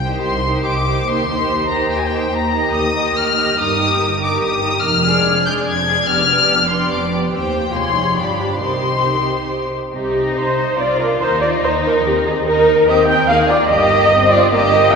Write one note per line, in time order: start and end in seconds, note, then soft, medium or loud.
0.00 0.19 C2 medium
0.00 0.44 D#3 soft
0.00 0.44 D#4 soft
0.00 0.44 G4 soft
0.00 0.44 C5 soft
0.00 0.21 G5 medium
0.23 0.61 C2 medium
0.23 0.65 C6 medium
0.46 0.86 D#3 soft
0.46 0.87 D#4 soft
0.46 0.86 G4 soft
0.46 0.85 C5 soft
0.65 1.02 C2 medium
0.65 1.03 C2 medium
0.65 1.06 D6 medium
0.86 1.07 D#3 soft
0.86 1.07 D#4 soft
0.86 1.06 G4 soft
0.86 1.06 C5 soft
1.06 1.44 D#2 medium
1.06 1.45 D#2 medium
1.06 1.28 D#3 soft
1.06 1.27 D#4 soft
1.06 1.28 G4 soft
1.06 1.28 C5 soft
1.06 1.70 C6 medium
1.28 1.69 D#3 soft
1.28 1.69 D#4 soft
1.28 1.70 G4 soft
1.28 1.70 C5 soft
1.49 1.86 D#2 medium
1.69 2.10 D#3 soft
1.69 2.10 D#4 soft
1.69 2.12 G4 soft
1.69 2.12 C5 soft
1.69 1.90 A#5 medium
1.90 2.28 D#2 medium
1.90 1.97 G5 medium
1.98 2.05 G#5 medium
2.05 2.33 G5 medium
2.11 2.32 D#3 soft
2.11 2.32 D#4 soft
2.11 2.33 G4 soft
2.11 2.33 C5 soft
2.33 2.69 D#2 medium
2.33 2.70 D#2 medium
2.33 2.74 A#5 medium
2.52 2.93 D#3 soft
2.52 2.93 D#4 soft
2.52 2.94 G4 soft
2.52 2.94 D#5 soft
2.74 3.11 D#2 medium
2.74 3.15 D#6 medium
2.94 3.35 D#3 soft
2.94 3.35 D#4 soft
2.94 3.36 G4 soft
2.94 3.36 D#5 soft
3.15 3.52 D#2 medium
3.15 3.58 F6 medium
3.37 3.57 D#3 soft
3.37 3.57 D#4 soft
3.37 3.57 G4 soft
3.37 3.57 D#5 medium
3.57 3.94 G1 medium
3.57 3.94 G2 medium
3.57 3.77 D#3 soft
3.57 3.77 D#4 soft
3.57 3.78 G4 soft
3.57 3.78 A#4 soft
3.57 4.20 D#6 medium
3.78 4.19 D#3 medium
3.78 4.19 D#4 soft
3.78 4.18 G4 soft
3.78 4.18 A#4 medium
3.99 4.36 G1 medium
3.99 4.36 G2 medium
4.19 4.60 D#3 soft
4.19 4.61 D#4 soft
4.19 4.60 G4 medium
4.19 4.60 A#4 medium
4.19 4.42 D6 medium
4.41 4.78 G1 medium
4.41 4.78 G2 medium
4.41 4.83 D#6 medium
4.62 4.82 D#3 soft
4.62 4.82 D#4 soft
4.62 4.82 G4 medium
4.62 4.82 A#4 soft
4.82 5.20 F1 medium
4.82 5.19 F2 medium
4.82 5.45 F6 medium
5.04 5.44 G#3 medium
5.04 5.44 D4 soft
5.04 5.44 G#4 medium
5.04 5.45 D5 medium
5.24 5.62 F1 medium
5.24 5.61 F2 medium
5.45 5.86 G#3 soft
5.45 5.86 D4 soft
5.45 5.86 G#4 medium
5.45 5.86 D5 medium
5.45 5.53 G6 medium
5.66 6.03 F1 medium
5.66 6.03 F2 medium
5.66 6.08 G#6 medium
5.87 6.08 G#3 soft
5.87 6.07 D4 soft
5.87 6.07 G#4 medium
5.87 6.07 D5 soft
6.07 6.43 F1 medium
6.07 6.44 F2 medium
6.07 6.27 B3 soft
6.07 6.27 D4 soft
6.07 6.28 G4 soft
6.07 6.28 D5 medium
6.07 6.69 F6 medium
6.28 6.68 B3 medium
6.28 6.69 D4 soft
6.28 6.69 G4 soft
6.28 6.69 D5 soft
6.48 6.85 F1 medium
6.48 6.85 F2 medium
6.69 7.11 B3 soft
6.69 7.11 D4 soft
6.69 7.11 G4 soft
6.69 7.11 D5 soft
6.69 6.90 C6 medium
6.89 7.27 F1 medium
6.89 7.27 F2 medium
6.89 7.11 D6 medium
7.12 7.32 B3 soft
7.12 7.32 D4 soft
7.12 7.32 G4 soft
7.12 7.32 D5 soft
7.32 7.71 D#2 medium
7.32 7.71 D#2 soft
7.32 7.41 C4 soft
7.32 7.72 G4 medium
7.32 7.72 G4 soft
7.32 7.72 C5 soft
7.32 7.71 G5 medium
7.53 7.74 A#3 soft
7.74 8.16 F1 soft
7.74 8.16 F2 soft
7.74 7.82 G#3 soft
7.74 7.95 F4 soft
7.74 8.16 G#4 soft
7.74 8.16 C#5 soft
7.74 8.16 C6 medium
7.95 8.03 G3 soft
7.95 8.17 D#4 soft
8.16 8.60 G1 soft
8.16 8.61 G2 soft
8.16 8.60 F3 soft
8.16 8.60 D4 soft
8.16 8.59 G4 soft
8.16 8.60 D5 soft
8.16 8.61 B5 medium
8.60 9.73 C2 soft
8.60 9.72 C3 soft
8.60 9.73 D#3 soft
8.60 9.73 D#4 soft
8.60 9.71 G4 soft
8.60 9.71 C5 soft
8.60 9.69 C6 medium
9.93 10.31 C2 medium
9.93 10.31 C3 medium
9.93 10.33 C4 medium
9.93 10.74 D#4 medium
9.93 10.33 G4 medium
10.35 10.73 C2 soft
10.35 10.73 C3 medium
10.35 10.79 D#4 medium
10.35 10.77 C5 medium
10.77 11.15 C2 medium
10.77 11.16 C3 medium
10.77 11.19 F4 medium
10.77 11.00 F4 medium
10.77 10.99 D5 medium
10.99 11.20 D4 medium
10.99 11.07 A#4 medium
11.20 11.58 D#2 medium
11.20 11.57 D#3 medium
11.20 11.41 D#4 medium
11.20 12.45 D#4 medium
11.20 11.41 C5 medium
11.41 11.63 F4 medium
11.41 11.49 D5 medium
11.62 11.99 D#2 medium
11.62 11.99 D#3 medium
11.62 11.84 D#4 medium
11.62 11.71 C5 medium
11.84 11.93 D4 medium
11.84 12.04 A#4 medium
12.03 12.41 D#2 medium
12.03 12.41 D#3 medium
12.03 12.24 C4 medium
12.03 12.13 G4 medium
12.25 12.46 C4 medium
12.25 12.33 G#4 medium
12.45 12.83 D#2 medium
12.45 12.83 D#3 medium
12.45 12.87 D#4 medium
12.45 12.88 D#4 medium
12.45 12.87 A#4 medium
12.87 13.24 D#2 medium
12.87 13.24 D#3 medium
12.87 13.28 C4 medium
12.87 13.08 G4 medium
12.87 13.08 D#5 medium
13.07 13.28 A#4 medium
13.07 13.28 G5 medium
13.28 13.66 D#2 medium
13.28 13.65 D#3 medium
13.28 14.12 A#3 medium
13.28 13.50 G#4 medium
13.28 13.37 F5 loud
13.49 13.70 F4 medium
13.49 13.70 D5 medium
13.69 14.07 G1 medium
13.69 14.06 G2 medium
13.69 14.30 G4 medium
13.69 14.31 D#5 loud
14.10 14.47 G1 medium
14.10 14.48 G2 medium
14.10 14.52 C4 medium
14.32 14.52 F4 medium
14.32 14.53 D5 medium
14.52 14.89 G1 medium
14.52 14.89 G2 medium
14.52 14.94 A#3 medium
14.52 14.93 G4 medium
14.52 14.94 D#5 loud